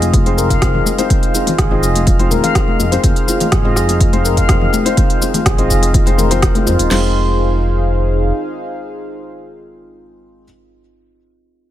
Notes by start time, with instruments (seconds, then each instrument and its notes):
Already playing: analog synth bass F1, felt piano G#3 C4 D#4 F4 C5, analog synth pad G#4 D#5 F5 F6
0.02 closed hi-hat, muted conga, high conga, shaker
0.13 handpan F4, kick, closed hi-hat, high conga, shaker
0.26 felt piano G#3 C4 D#4 F4 C5, closed hi-hat, muted conga
0.38 handpan A#4, shaker
0.50 handpan F5, kick, closed hi-hat, shaker
0.62 felt piano G#3 C4 D#4 F4 C5, kick, cross-stick, closed hi-hat, muted conga, shaker
0.75 low conga
0.86 muted conga, high conga, shaker
0.98 felt piano G#3 C4 D#4 F4 C5, handpan C5, closed hi-hat, shaker
1.10 handpan F4, kick, closed hi-hat, muted conga, shaker
1.23 closed hi-hat
1.34 felt piano G#3 C4 D#4 F4 C5, handpan F4, shaker
1.47 closed hi-hat, muted conga, high conga, low conga, shaker
1.58 analog synth bass G#1, handpan G#4, kick, cross-stick, closed hi-hat, shaker
1.71 felt piano G#3 C4 D#4 F4 C5, handpan D#5, muted conga
1.83 analog synth bass F1, shaker
1.96 closed hi-hat, muted conga, high conga, shaker
2.07 handpan F4, kick, closed hi-hat, shaker
2.19 felt piano G#3 C4 D#4 F4 C5, closed hi-hat, muted conga
2.31 analog synth bass D#1, handpan A#4, high conga, low conga, shaker
2.44 handpan F5, closed hi-hat, high conga, low conga, shaker
2.55 felt piano G#3 D#4, kick, cross-stick, closed hi-hat, shaker
2.68 high conga
2.80 analog synth bass F1, muted conga, high conga, shaker
2.92 felt piano G#3 C4 D#4 F4 C5, handpan C5, closed hi-hat, shaker
3.04 analog synth bass F1, handpan F4, kick, closed hi-hat, muted conga, shaker
3.16 closed hi-hat
3.28 felt piano G#3 C4 D#4 F4 C5, handpan F4, shaker
3.40 closed hi-hat, muted conga, high conga, low conga, shaker
3.52 analog synth bass G#1, handpan G#4, kick, cross-stick, closed hi-hat, shaker
3.65 felt piano G#3 C4 D#4 F4 C5, handpan D#5, muted conga
3.76 analog synth bass F1, cross-stick, shaker
3.89 closed hi-hat, muted conga, high conga, shaker
4.01 handpan F4, kick, closed hi-hat, high conga, shaker
4.13 felt piano G#3 C4 D#4 F4 C5, closed hi-hat, muted conga
4.25 handpan A#4, shaker
4.37 handpan F5, kick, closed hi-hat, shaker
4.49 felt piano G#3 C4 D#4 F4 C5, kick, cross-stick, closed hi-hat, muted conga, shaker
4.61 low conga
4.73 muted conga, high conga, shaker
4.85 felt piano G#3 C4 D#4 F4 C5, handpan C5, closed hi-hat, shaker
4.97 handpan F4, kick, closed hi-hat, muted conga, shaker
5.10 closed hi-hat
5.21 felt piano G#3 C4 D#4 F4 C5, handpan F4, shaker
5.34 closed hi-hat, muted conga, high conga, low conga, shaker
5.46 analog synth bass G#1, handpan G#4, kick, cross-stick, closed hi-hat, shaker
5.58 felt piano G#3 C4 D#4 F4 C5, handpan D#5, closed hi-hat, muted conga
5.70 analog synth bass F1, kick, shaker
5.82 closed hi-hat, muted conga, high conga, shaker
5.94 handpan F4, kick, closed hi-hat, shaker
6.06 felt piano G#3 C4 D#4 F4 C5, closed hi-hat, muted conga
6.18 handpan A#4, high conga, low conga, shaker
6.30 felt piano G#3 C4 D#4 F4 C5, handpan C5, closed hi-hat, high conga, low conga, shaker
6.42 analog synth bass F1, handpan C4, kick, cross-stick, closed hi-hat, muted conga, shaker
6.55 felt piano G#3 C4 D#4 F4 C5, handpan F4, closed hi-hat, high conga
6.67 analog synth bass F2, felt piano G#3 C4 D#4 F4 C5, handpan F4, muted conga, high conga, shaker
6.79 analog synth bass D#1, handpan D#4, closed hi-hat, shaker
6.91 analog synth bass F1, felt piano G#3 C4 D#4 F4 C5, analog synth pad D#4 G#4 C5 F5, handpan F4, snare, crash